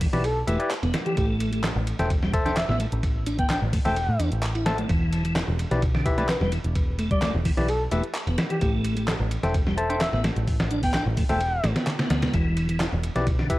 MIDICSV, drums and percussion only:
0, 0, Header, 1, 2, 480
1, 0, Start_track
1, 0, Tempo, 465116
1, 1211, Time_signature, 4, 2, 24, 8
1, 14023, End_track
2, 0, Start_track
2, 0, Title_t, "Drums"
2, 9, Note_on_c, 9, 42, 78
2, 11, Note_on_c, 9, 36, 96
2, 11, Note_on_c, 9, 46, 82
2, 112, Note_off_c, 9, 42, 0
2, 114, Note_off_c, 9, 46, 0
2, 115, Note_off_c, 9, 36, 0
2, 136, Note_on_c, 9, 38, 47
2, 136, Note_on_c, 9, 42, 41
2, 239, Note_off_c, 9, 42, 0
2, 240, Note_off_c, 9, 38, 0
2, 249, Note_on_c, 9, 51, 85
2, 250, Note_on_c, 9, 42, 33
2, 352, Note_off_c, 9, 51, 0
2, 354, Note_off_c, 9, 42, 0
2, 490, Note_on_c, 9, 51, 73
2, 491, Note_on_c, 9, 42, 84
2, 593, Note_off_c, 9, 51, 0
2, 595, Note_off_c, 9, 42, 0
2, 617, Note_on_c, 9, 42, 44
2, 720, Note_off_c, 9, 42, 0
2, 729, Note_on_c, 9, 39, 113
2, 729, Note_on_c, 9, 42, 33
2, 729, Note_on_c, 9, 51, 90
2, 832, Note_off_c, 9, 39, 0
2, 832, Note_off_c, 9, 42, 0
2, 832, Note_off_c, 9, 51, 0
2, 856, Note_on_c, 9, 51, 46
2, 959, Note_off_c, 9, 51, 0
2, 968, Note_on_c, 9, 42, 83
2, 969, Note_on_c, 9, 38, 122
2, 969, Note_on_c, 9, 51, 74
2, 1071, Note_off_c, 9, 42, 0
2, 1073, Note_off_c, 9, 38, 0
2, 1073, Note_off_c, 9, 51, 0
2, 1094, Note_on_c, 9, 42, 45
2, 1197, Note_off_c, 9, 42, 0
2, 1209, Note_on_c, 9, 42, 35
2, 1209, Note_on_c, 9, 51, 87
2, 1210, Note_on_c, 9, 36, 110
2, 1312, Note_off_c, 9, 42, 0
2, 1312, Note_off_c, 9, 51, 0
2, 1314, Note_off_c, 9, 36, 0
2, 1449, Note_on_c, 9, 42, 73
2, 1450, Note_on_c, 9, 51, 70
2, 1552, Note_off_c, 9, 42, 0
2, 1553, Note_off_c, 9, 51, 0
2, 1575, Note_on_c, 9, 42, 43
2, 1577, Note_on_c, 9, 51, 44
2, 1678, Note_off_c, 9, 42, 0
2, 1680, Note_off_c, 9, 51, 0
2, 1690, Note_on_c, 9, 38, 120
2, 1690, Note_on_c, 9, 39, 110
2, 1690, Note_on_c, 9, 42, 33
2, 1690, Note_on_c, 9, 51, 90
2, 1793, Note_off_c, 9, 38, 0
2, 1793, Note_off_c, 9, 39, 0
2, 1793, Note_off_c, 9, 42, 0
2, 1793, Note_off_c, 9, 51, 0
2, 1930, Note_on_c, 9, 42, 80
2, 1930, Note_on_c, 9, 51, 67
2, 2033, Note_off_c, 9, 42, 0
2, 2033, Note_off_c, 9, 51, 0
2, 2056, Note_on_c, 9, 38, 51
2, 2056, Note_on_c, 9, 42, 41
2, 2159, Note_off_c, 9, 38, 0
2, 2159, Note_off_c, 9, 42, 0
2, 2169, Note_on_c, 9, 42, 35
2, 2170, Note_on_c, 9, 51, 87
2, 2171, Note_on_c, 9, 36, 102
2, 2272, Note_off_c, 9, 42, 0
2, 2273, Note_off_c, 9, 51, 0
2, 2274, Note_off_c, 9, 36, 0
2, 2297, Note_on_c, 9, 38, 54
2, 2400, Note_off_c, 9, 38, 0
2, 2410, Note_on_c, 9, 42, 79
2, 2411, Note_on_c, 9, 36, 97
2, 2411, Note_on_c, 9, 51, 72
2, 2513, Note_off_c, 9, 42, 0
2, 2514, Note_off_c, 9, 36, 0
2, 2514, Note_off_c, 9, 51, 0
2, 2537, Note_on_c, 9, 38, 41
2, 2537, Note_on_c, 9, 42, 42
2, 2640, Note_off_c, 9, 42, 0
2, 2641, Note_off_c, 9, 38, 0
2, 2650, Note_on_c, 9, 38, 120
2, 2650, Note_on_c, 9, 39, 110
2, 2650, Note_on_c, 9, 42, 32
2, 2650, Note_on_c, 9, 51, 88
2, 2753, Note_off_c, 9, 38, 0
2, 2753, Note_off_c, 9, 39, 0
2, 2753, Note_off_c, 9, 42, 0
2, 2753, Note_off_c, 9, 51, 0
2, 2778, Note_on_c, 9, 38, 42
2, 2881, Note_off_c, 9, 38, 0
2, 2888, Note_on_c, 9, 42, 80
2, 2891, Note_on_c, 9, 51, 73
2, 2991, Note_off_c, 9, 42, 0
2, 2994, Note_off_c, 9, 51, 0
2, 3015, Note_on_c, 9, 42, 43
2, 3118, Note_off_c, 9, 42, 0
2, 3129, Note_on_c, 9, 51, 90
2, 3130, Note_on_c, 9, 36, 112
2, 3131, Note_on_c, 9, 42, 33
2, 3232, Note_off_c, 9, 51, 0
2, 3234, Note_off_c, 9, 36, 0
2, 3234, Note_off_c, 9, 42, 0
2, 3369, Note_on_c, 9, 42, 73
2, 3370, Note_on_c, 9, 51, 68
2, 3472, Note_off_c, 9, 42, 0
2, 3473, Note_off_c, 9, 51, 0
2, 3495, Note_on_c, 9, 42, 42
2, 3497, Note_on_c, 9, 36, 95
2, 3598, Note_off_c, 9, 42, 0
2, 3600, Note_off_c, 9, 36, 0
2, 3609, Note_on_c, 9, 39, 111
2, 3609, Note_on_c, 9, 42, 30
2, 3611, Note_on_c, 9, 38, 120
2, 3611, Note_on_c, 9, 51, 92
2, 3713, Note_off_c, 9, 39, 0
2, 3713, Note_off_c, 9, 42, 0
2, 3714, Note_off_c, 9, 38, 0
2, 3714, Note_off_c, 9, 51, 0
2, 3850, Note_on_c, 9, 42, 73
2, 3850, Note_on_c, 9, 46, 78
2, 3851, Note_on_c, 9, 36, 95
2, 3953, Note_off_c, 9, 42, 0
2, 3954, Note_off_c, 9, 36, 0
2, 3954, Note_off_c, 9, 46, 0
2, 3975, Note_on_c, 9, 42, 40
2, 3977, Note_on_c, 9, 38, 47
2, 4078, Note_off_c, 9, 42, 0
2, 4080, Note_off_c, 9, 38, 0
2, 4090, Note_on_c, 9, 51, 87
2, 4091, Note_on_c, 9, 42, 32
2, 4193, Note_off_c, 9, 51, 0
2, 4194, Note_off_c, 9, 42, 0
2, 4330, Note_on_c, 9, 42, 77
2, 4330, Note_on_c, 9, 51, 71
2, 4433, Note_off_c, 9, 42, 0
2, 4433, Note_off_c, 9, 51, 0
2, 4455, Note_on_c, 9, 42, 39
2, 4559, Note_off_c, 9, 42, 0
2, 4569, Note_on_c, 9, 39, 114
2, 4569, Note_on_c, 9, 42, 31
2, 4570, Note_on_c, 9, 51, 87
2, 4672, Note_off_c, 9, 39, 0
2, 4672, Note_off_c, 9, 42, 0
2, 4673, Note_off_c, 9, 51, 0
2, 4698, Note_on_c, 9, 51, 46
2, 4801, Note_off_c, 9, 51, 0
2, 4809, Note_on_c, 9, 42, 76
2, 4811, Note_on_c, 9, 38, 125
2, 4811, Note_on_c, 9, 51, 72
2, 4913, Note_off_c, 9, 42, 0
2, 4914, Note_off_c, 9, 38, 0
2, 4914, Note_off_c, 9, 51, 0
2, 4936, Note_on_c, 9, 42, 42
2, 5039, Note_off_c, 9, 42, 0
2, 5050, Note_on_c, 9, 51, 92
2, 5051, Note_on_c, 9, 36, 108
2, 5051, Note_on_c, 9, 42, 30
2, 5154, Note_off_c, 9, 36, 0
2, 5154, Note_off_c, 9, 42, 0
2, 5154, Note_off_c, 9, 51, 0
2, 5290, Note_on_c, 9, 42, 66
2, 5290, Note_on_c, 9, 51, 69
2, 5393, Note_off_c, 9, 51, 0
2, 5394, Note_off_c, 9, 42, 0
2, 5416, Note_on_c, 9, 42, 40
2, 5416, Note_on_c, 9, 51, 46
2, 5519, Note_off_c, 9, 42, 0
2, 5520, Note_off_c, 9, 51, 0
2, 5529, Note_on_c, 9, 38, 123
2, 5529, Note_on_c, 9, 51, 95
2, 5532, Note_on_c, 9, 39, 107
2, 5532, Note_on_c, 9, 42, 29
2, 5632, Note_off_c, 9, 38, 0
2, 5632, Note_off_c, 9, 51, 0
2, 5636, Note_off_c, 9, 39, 0
2, 5636, Note_off_c, 9, 42, 0
2, 5771, Note_on_c, 9, 42, 70
2, 5771, Note_on_c, 9, 51, 68
2, 5874, Note_off_c, 9, 42, 0
2, 5874, Note_off_c, 9, 51, 0
2, 5895, Note_on_c, 9, 42, 39
2, 5896, Note_on_c, 9, 38, 48
2, 5998, Note_off_c, 9, 42, 0
2, 6000, Note_off_c, 9, 38, 0
2, 6009, Note_on_c, 9, 51, 84
2, 6010, Note_on_c, 9, 42, 31
2, 6011, Note_on_c, 9, 36, 113
2, 6112, Note_off_c, 9, 51, 0
2, 6113, Note_off_c, 9, 42, 0
2, 6114, Note_off_c, 9, 36, 0
2, 6136, Note_on_c, 9, 38, 55
2, 6239, Note_off_c, 9, 38, 0
2, 6250, Note_on_c, 9, 42, 77
2, 6250, Note_on_c, 9, 51, 71
2, 6251, Note_on_c, 9, 36, 97
2, 6353, Note_off_c, 9, 42, 0
2, 6353, Note_off_c, 9, 51, 0
2, 6354, Note_off_c, 9, 36, 0
2, 6375, Note_on_c, 9, 38, 39
2, 6376, Note_on_c, 9, 42, 39
2, 6479, Note_off_c, 9, 38, 0
2, 6479, Note_off_c, 9, 42, 0
2, 6489, Note_on_c, 9, 38, 120
2, 6489, Note_on_c, 9, 39, 106
2, 6489, Note_on_c, 9, 42, 30
2, 6489, Note_on_c, 9, 51, 87
2, 6593, Note_off_c, 9, 38, 0
2, 6593, Note_off_c, 9, 39, 0
2, 6593, Note_off_c, 9, 42, 0
2, 6593, Note_off_c, 9, 51, 0
2, 6617, Note_on_c, 9, 38, 43
2, 6721, Note_off_c, 9, 38, 0
2, 6729, Note_on_c, 9, 42, 73
2, 6730, Note_on_c, 9, 51, 73
2, 6832, Note_off_c, 9, 42, 0
2, 6833, Note_off_c, 9, 51, 0
2, 6857, Note_on_c, 9, 42, 41
2, 6960, Note_off_c, 9, 42, 0
2, 6971, Note_on_c, 9, 36, 107
2, 6971, Note_on_c, 9, 42, 31
2, 6971, Note_on_c, 9, 51, 91
2, 7074, Note_off_c, 9, 42, 0
2, 7074, Note_off_c, 9, 51, 0
2, 7075, Note_off_c, 9, 36, 0
2, 7211, Note_on_c, 9, 42, 69
2, 7211, Note_on_c, 9, 51, 70
2, 7314, Note_off_c, 9, 42, 0
2, 7314, Note_off_c, 9, 51, 0
2, 7336, Note_on_c, 9, 42, 40
2, 7337, Note_on_c, 9, 36, 100
2, 7440, Note_off_c, 9, 36, 0
2, 7440, Note_off_c, 9, 42, 0
2, 7450, Note_on_c, 9, 39, 101
2, 7450, Note_on_c, 9, 42, 31
2, 7452, Note_on_c, 9, 38, 121
2, 7452, Note_on_c, 9, 51, 91
2, 7554, Note_off_c, 9, 39, 0
2, 7554, Note_off_c, 9, 42, 0
2, 7555, Note_off_c, 9, 38, 0
2, 7555, Note_off_c, 9, 51, 0
2, 7691, Note_on_c, 9, 36, 94
2, 7691, Note_on_c, 9, 42, 71
2, 7691, Note_on_c, 9, 46, 82
2, 7794, Note_off_c, 9, 36, 0
2, 7794, Note_off_c, 9, 42, 0
2, 7794, Note_off_c, 9, 46, 0
2, 7816, Note_on_c, 9, 42, 37
2, 7818, Note_on_c, 9, 38, 49
2, 7919, Note_off_c, 9, 42, 0
2, 7921, Note_off_c, 9, 38, 0
2, 7929, Note_on_c, 9, 42, 32
2, 7931, Note_on_c, 9, 51, 87
2, 8033, Note_off_c, 9, 42, 0
2, 8035, Note_off_c, 9, 51, 0
2, 8167, Note_on_c, 9, 42, 72
2, 8172, Note_on_c, 9, 51, 71
2, 8271, Note_off_c, 9, 42, 0
2, 8275, Note_off_c, 9, 51, 0
2, 8292, Note_on_c, 9, 42, 37
2, 8396, Note_off_c, 9, 42, 0
2, 8406, Note_on_c, 9, 39, 106
2, 8406, Note_on_c, 9, 42, 31
2, 8411, Note_on_c, 9, 51, 92
2, 8510, Note_off_c, 9, 39, 0
2, 8510, Note_off_c, 9, 42, 0
2, 8514, Note_off_c, 9, 51, 0
2, 8537, Note_on_c, 9, 51, 46
2, 8640, Note_off_c, 9, 51, 0
2, 8648, Note_on_c, 9, 42, 74
2, 8650, Note_on_c, 9, 38, 121
2, 8650, Note_on_c, 9, 51, 74
2, 8751, Note_off_c, 9, 42, 0
2, 8754, Note_off_c, 9, 38, 0
2, 8754, Note_off_c, 9, 51, 0
2, 8774, Note_on_c, 9, 42, 39
2, 8877, Note_off_c, 9, 42, 0
2, 8888, Note_on_c, 9, 42, 31
2, 8891, Note_on_c, 9, 36, 107
2, 8891, Note_on_c, 9, 51, 92
2, 8991, Note_off_c, 9, 42, 0
2, 8994, Note_off_c, 9, 36, 0
2, 8994, Note_off_c, 9, 51, 0
2, 9128, Note_on_c, 9, 42, 70
2, 9129, Note_on_c, 9, 51, 68
2, 9231, Note_off_c, 9, 42, 0
2, 9232, Note_off_c, 9, 51, 0
2, 9253, Note_on_c, 9, 42, 41
2, 9255, Note_on_c, 9, 51, 44
2, 9357, Note_off_c, 9, 42, 0
2, 9358, Note_off_c, 9, 51, 0
2, 9369, Note_on_c, 9, 38, 123
2, 9369, Note_on_c, 9, 39, 101
2, 9369, Note_on_c, 9, 42, 29
2, 9369, Note_on_c, 9, 51, 94
2, 9472, Note_off_c, 9, 38, 0
2, 9472, Note_off_c, 9, 39, 0
2, 9472, Note_off_c, 9, 42, 0
2, 9472, Note_off_c, 9, 51, 0
2, 9608, Note_on_c, 9, 51, 68
2, 9610, Note_on_c, 9, 42, 75
2, 9712, Note_off_c, 9, 51, 0
2, 9713, Note_off_c, 9, 42, 0
2, 9734, Note_on_c, 9, 38, 52
2, 9736, Note_on_c, 9, 42, 38
2, 9837, Note_off_c, 9, 38, 0
2, 9839, Note_off_c, 9, 42, 0
2, 9848, Note_on_c, 9, 51, 86
2, 9849, Note_on_c, 9, 36, 111
2, 9849, Note_on_c, 9, 42, 32
2, 9952, Note_off_c, 9, 51, 0
2, 9953, Note_off_c, 9, 36, 0
2, 9953, Note_off_c, 9, 42, 0
2, 9976, Note_on_c, 9, 38, 55
2, 10079, Note_off_c, 9, 38, 0
2, 10089, Note_on_c, 9, 42, 73
2, 10193, Note_off_c, 9, 42, 0
2, 10216, Note_on_c, 9, 42, 40
2, 10320, Note_off_c, 9, 42, 0
2, 10330, Note_on_c, 9, 38, 124
2, 10330, Note_on_c, 9, 39, 106
2, 10330, Note_on_c, 9, 42, 32
2, 10330, Note_on_c, 9, 51, 92
2, 10433, Note_off_c, 9, 38, 0
2, 10433, Note_off_c, 9, 39, 0
2, 10433, Note_off_c, 9, 42, 0
2, 10433, Note_off_c, 9, 51, 0
2, 10457, Note_on_c, 9, 38, 44
2, 10560, Note_off_c, 9, 38, 0
2, 10570, Note_on_c, 9, 42, 75
2, 10572, Note_on_c, 9, 38, 114
2, 10572, Note_on_c, 9, 51, 84
2, 10673, Note_off_c, 9, 42, 0
2, 10675, Note_off_c, 9, 38, 0
2, 10675, Note_off_c, 9, 51, 0
2, 10696, Note_on_c, 9, 42, 43
2, 10799, Note_off_c, 9, 42, 0
2, 10810, Note_on_c, 9, 42, 33
2, 10811, Note_on_c, 9, 36, 85
2, 10812, Note_on_c, 9, 46, 72
2, 10914, Note_off_c, 9, 36, 0
2, 10914, Note_off_c, 9, 42, 0
2, 10915, Note_off_c, 9, 46, 0
2, 10938, Note_on_c, 9, 38, 110
2, 10938, Note_on_c, 9, 51, 83
2, 11041, Note_off_c, 9, 38, 0
2, 11041, Note_off_c, 9, 51, 0
2, 11049, Note_on_c, 9, 42, 73
2, 11153, Note_off_c, 9, 42, 0
2, 11175, Note_on_c, 9, 42, 44
2, 11177, Note_on_c, 9, 36, 89
2, 11177, Note_on_c, 9, 46, 74
2, 11278, Note_off_c, 9, 42, 0
2, 11280, Note_off_c, 9, 36, 0
2, 11280, Note_off_c, 9, 46, 0
2, 11288, Note_on_c, 9, 39, 101
2, 11288, Note_on_c, 9, 42, 33
2, 11291, Note_on_c, 9, 38, 125
2, 11291, Note_on_c, 9, 51, 92
2, 11391, Note_off_c, 9, 39, 0
2, 11391, Note_off_c, 9, 42, 0
2, 11394, Note_off_c, 9, 38, 0
2, 11394, Note_off_c, 9, 51, 0
2, 11528, Note_on_c, 9, 42, 76
2, 11531, Note_on_c, 9, 36, 101
2, 11531, Note_on_c, 9, 46, 83
2, 11631, Note_off_c, 9, 42, 0
2, 11634, Note_off_c, 9, 36, 0
2, 11634, Note_off_c, 9, 46, 0
2, 11654, Note_on_c, 9, 42, 40
2, 11656, Note_on_c, 9, 38, 48
2, 11757, Note_off_c, 9, 42, 0
2, 11759, Note_off_c, 9, 38, 0
2, 11770, Note_on_c, 9, 42, 33
2, 11770, Note_on_c, 9, 51, 87
2, 11873, Note_off_c, 9, 42, 0
2, 11873, Note_off_c, 9, 51, 0
2, 12009, Note_on_c, 9, 38, 105
2, 12009, Note_on_c, 9, 51, 83
2, 12011, Note_on_c, 9, 42, 78
2, 12112, Note_off_c, 9, 38, 0
2, 12112, Note_off_c, 9, 51, 0
2, 12114, Note_off_c, 9, 42, 0
2, 12134, Note_on_c, 9, 38, 108
2, 12134, Note_on_c, 9, 51, 83
2, 12135, Note_on_c, 9, 42, 41
2, 12237, Note_off_c, 9, 38, 0
2, 12237, Note_off_c, 9, 51, 0
2, 12238, Note_off_c, 9, 42, 0
2, 12249, Note_on_c, 9, 38, 107
2, 12249, Note_on_c, 9, 39, 101
2, 12249, Note_on_c, 9, 42, 34
2, 12249, Note_on_c, 9, 51, 77
2, 12352, Note_off_c, 9, 38, 0
2, 12352, Note_off_c, 9, 51, 0
2, 12353, Note_off_c, 9, 39, 0
2, 12353, Note_off_c, 9, 42, 0
2, 12376, Note_on_c, 9, 38, 114
2, 12376, Note_on_c, 9, 51, 84
2, 12479, Note_off_c, 9, 38, 0
2, 12479, Note_off_c, 9, 51, 0
2, 12489, Note_on_c, 9, 42, 80
2, 12492, Note_on_c, 9, 38, 111
2, 12492, Note_on_c, 9, 51, 81
2, 12593, Note_off_c, 9, 42, 0
2, 12595, Note_off_c, 9, 38, 0
2, 12595, Note_off_c, 9, 51, 0
2, 12614, Note_on_c, 9, 42, 43
2, 12617, Note_on_c, 9, 38, 107
2, 12617, Note_on_c, 9, 51, 80
2, 12718, Note_off_c, 9, 42, 0
2, 12721, Note_off_c, 9, 38, 0
2, 12721, Note_off_c, 9, 51, 0
2, 12730, Note_on_c, 9, 42, 35
2, 12732, Note_on_c, 9, 36, 108
2, 12732, Note_on_c, 9, 51, 88
2, 12833, Note_off_c, 9, 42, 0
2, 12835, Note_off_c, 9, 36, 0
2, 12835, Note_off_c, 9, 51, 0
2, 12970, Note_on_c, 9, 42, 73
2, 12971, Note_on_c, 9, 51, 72
2, 13073, Note_off_c, 9, 42, 0
2, 13075, Note_off_c, 9, 51, 0
2, 13095, Note_on_c, 9, 42, 45
2, 13096, Note_on_c, 9, 51, 44
2, 13199, Note_off_c, 9, 42, 0
2, 13199, Note_off_c, 9, 51, 0
2, 13211, Note_on_c, 9, 38, 120
2, 13211, Note_on_c, 9, 39, 107
2, 13211, Note_on_c, 9, 42, 31
2, 13211, Note_on_c, 9, 51, 94
2, 13314, Note_off_c, 9, 38, 0
2, 13314, Note_off_c, 9, 39, 0
2, 13314, Note_off_c, 9, 42, 0
2, 13314, Note_off_c, 9, 51, 0
2, 13451, Note_on_c, 9, 42, 81
2, 13451, Note_on_c, 9, 51, 67
2, 13554, Note_off_c, 9, 51, 0
2, 13555, Note_off_c, 9, 42, 0
2, 13577, Note_on_c, 9, 42, 42
2, 13578, Note_on_c, 9, 38, 51
2, 13681, Note_off_c, 9, 42, 0
2, 13682, Note_off_c, 9, 38, 0
2, 13692, Note_on_c, 9, 42, 35
2, 13692, Note_on_c, 9, 51, 87
2, 13693, Note_on_c, 9, 36, 111
2, 13795, Note_off_c, 9, 42, 0
2, 13795, Note_off_c, 9, 51, 0
2, 13796, Note_off_c, 9, 36, 0
2, 13819, Note_on_c, 9, 38, 55
2, 13922, Note_off_c, 9, 38, 0
2, 13931, Note_on_c, 9, 42, 80
2, 13932, Note_on_c, 9, 51, 72
2, 13933, Note_on_c, 9, 36, 97
2, 14023, Note_off_c, 9, 36, 0
2, 14023, Note_off_c, 9, 42, 0
2, 14023, Note_off_c, 9, 51, 0
2, 14023, End_track
0, 0, End_of_file